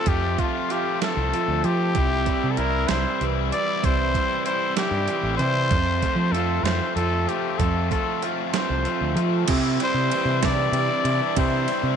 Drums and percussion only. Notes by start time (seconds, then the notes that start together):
0.06 kick, closed hi-hat
0.38 kick, closed hi-hat
0.70 closed hi-hat
1.02 snare, closed hi-hat
1.34 closed hi-hat
1.64 closed hi-hat
1.95 kick, closed hi-hat
2.26 kick, closed hi-hat
2.57 closed hi-hat
2.88 snare, closed hi-hat
3.21 closed hi-hat
3.52 closed hi-hat
3.83 kick, closed hi-hat
4.15 kick, closed hi-hat
4.46 closed hi-hat
4.77 snare, closed hi-hat
5.08 closed hi-hat
5.39 closed hi-hat
5.71 kick, closed hi-hat
6.02 kick, closed hi-hat
6.35 closed hi-hat
6.65 snare, closed hi-hat
6.97 closed hi-hat
7.29 closed hi-hat
7.60 kick, closed hi-hat
7.91 kick, closed hi-hat
8.23 closed hi-hat
8.54 snare, closed hi-hat
8.85 closed hi-hat
9.17 closed hi-hat
9.48 kick, crash, ride
9.80 ride
10.12 ride
10.43 kick, snare, ride
10.73 ride
11.05 ride
11.37 kick, ride
11.68 ride